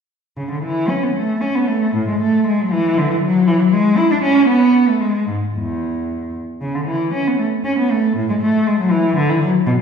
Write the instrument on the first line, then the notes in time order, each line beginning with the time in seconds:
cello
0.37 C#3
0.50 D3
0.63 E3
0.89 C#4
1.03 B3
1.16 A3
1.41 C#4
1.55 B3
1.68 A3
1.94 A2
2.08 G#3
2.21 A3
2.46 G#3
2.61 F#3
2.72 E3
2.98 D3
3.11 E3
3.23 F#3
3.47 E3
3.60 F#3
3.72 G#3
3.97 E4
4.11 D4
4.22 C#4
4.48 B3
4.88 A3
5.00 G#3
5.27 G#2
5.55 E2
6.61 C#3
6.75 D3
6.87 E3
7.13 C#4
7.27 B3
7.38 A3
7.64 C#4
7.78 B3
7.91 A3
8.16 A2
8.29 G#3
8.41 A3
8.66 G#3
8.79 F#3
8.91 E3
9.16 D3
9.30 E3
9.42 F#3
9.67 B2